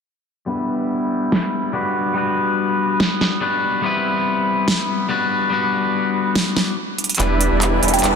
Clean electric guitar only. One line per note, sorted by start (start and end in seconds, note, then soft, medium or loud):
0.46 1.71 G3 medium
0.46 1.71 B3 medium
0.46 1.72 D4 medium
0.46 1.72 E4 medium
0.50 1.73 B4 medium
1.73 2.13 G3 medium
1.73 2.13 B3 medium
1.73 2.14 D4 medium
1.73 2.14 F#4 medium
1.73 2.14 B4 medium
2.14 3.38 G3 medium
2.14 3.39 B3 medium
2.14 3.39 D4 medium
2.14 3.40 F#4 medium
2.14 3.40 B4 loud
3.41 3.81 G3 medium
3.41 3.81 B3 medium
3.41 3.81 D4 medium
3.41 3.82 F#4 medium
3.41 3.82 B4 medium
3.82 5.06 G3 medium
3.82 5.07 B3 medium
3.82 5.07 C4 medium
3.82 5.08 E4 medium
3.86 5.08 B4 loud
5.09 5.49 G3 medium
5.09 5.49 B3 medium
5.09 5.49 D4 medium
5.09 5.50 F#4 medium
5.09 5.50 B4 medium
5.50 6.74 G3 medium
5.50 6.75 B3 medium
5.50 6.75 D4 medium
5.50 6.76 F#4 medium
5.54 6.76 B4 medium
7.18 8.15 G3 medium
7.18 8.15 B3 medium
7.18 8.15 D4 medium
7.18 8.15 E4 medium
7.18 8.15 B4 loud